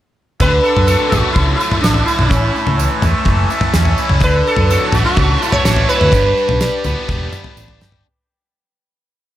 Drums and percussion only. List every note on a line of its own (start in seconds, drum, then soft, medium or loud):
0.40 kick medium
0.40 floor tom medium
0.40 tambourine medium
0.65 tambourine soft
0.77 floor tom medium
0.88 tambourine medium
1.12 floor tom medium
1.12 mid tom medium
1.12 tambourine medium
1.36 kick loud
1.36 floor tom medium
1.60 tambourine medium
1.72 floor tom medium
1.72 mid tom medium
1.84 snare medium
1.84 tambourine medium
1.94 floor tom medium
2.08 tambourine medium
2.19 mid tom medium
2.31 kick loud
2.31 floor tom medium
2.31 tambourine medium
2.56 tambourine soft
2.67 floor tom medium
2.79 tambourine medium
3.02 floor tom medium
3.02 mid tom medium
3.02 tambourine medium
3.25 kick loud
3.25 floor tom medium
3.50 tambourine medium
3.61 floor tom medium
3.61 mid tom medium
3.74 snare medium
3.74 tambourine medium
3.85 floor tom medium
3.98 tambourine medium
4.09 mid tom medium
4.21 kick loud
4.21 floor tom medium
4.21 tambourine medium
4.47 tambourine soft
4.56 floor tom medium
4.70 tambourine medium
4.92 floor tom medium
4.92 mid tom medium
4.92 tambourine medium
5.17 kick loud
5.17 floor tom medium
5.42 tambourine medium
5.52 floor tom medium
5.52 mid tom medium
5.65 snare medium
5.65 tambourine medium
5.76 floor tom medium
5.89 tambourine medium
6.01 mid tom medium
6.12 kick loud
6.12 floor tom medium
6.12 tambourine medium
6.37 tambourine soft
6.49 floor tom medium
6.61 snare medium
6.61 tambourine loud
6.84 floor tom medium
6.84 tambourine medium
7.09 kick loud
7.09 floor tom medium
7.09 tambourine soft
7.32 mid tom medium
7.32 tambourine medium
7.44 floor tom medium
7.57 tambourine loud
7.68 floor tom medium
7.81 snare medium
7.81 tambourine medium
7.92 floor tom medium